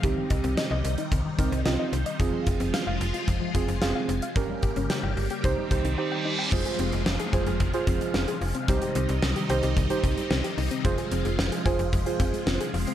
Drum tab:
CC |----------------|----------------|----------------|x---------------|
HH |x-xxx-xxx-xxx-xx|x-xxx-xxx-xxx-xx|x-xxx-oxx-xx----|-xxx-xxxxxxx-xox|
SD |----o-------o---|----o-------o---|----o-----------|----o-------o---|
BD |o-o-----o-o-----|o-o-----o-o-----|o-o-----o-o-----|o-----o-o-o-----|

CC |----------------|----------------|
HH |xxxx-xxxxxxx-xox|xxxx-xxxxxxx-xox|
SD |----o-------o---|----o-------o---|
BD |o-------o-o-----|o-----o-o-o-----|